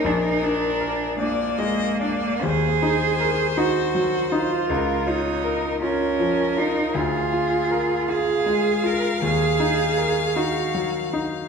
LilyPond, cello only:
\new Staff \with { instrumentName = "Cello" } { \time 6/8 \key ees \dorian \tempo 4. = 53 d'16 ees'16 d'4 bes4. | aes'4. ges'4 f'8~ | f'8 ees'4 des'4 ees'8 | \key ees \minor f'4. aes'4 bes'8 |
aes'4. ges'4 r8 | }